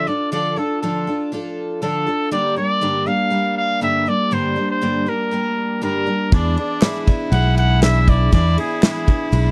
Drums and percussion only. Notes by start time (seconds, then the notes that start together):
6.32 kick, ride
6.57 ride
6.82 snare, clap, ride
7.07 kick, ride
7.32 ride
7.58 ride
7.83 snare, clap, ride
8.08 kick, ride
8.32 kick, ride
8.58 ride
8.83 snare, clap, ride
9.08 kick, ride
9.33 ride